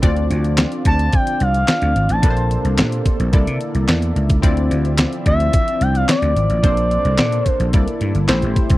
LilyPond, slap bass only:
\new Staff \with { instrumentName = "Slap bass" } { \clef bass \time 4/4 \key d \minor \tempo 4 = 109 d,8 d,8. r16 d,8 r8 c,8 r16 d,16 gis,,16 a,,16 | bes,,8. c,16 bes,8 r16 bes,,16 c,16 c16 r16 c,16 e,8 cis,8 | d,8 d,8. r16 d,8 r8 c,8 r16 d,16 gis,,16 a,,16 | bes,,8. c,16 bes,8 r16 bes,,16 c,16 r16 g,16 g,,16 a,,16 a,,16 r16 c,16 | }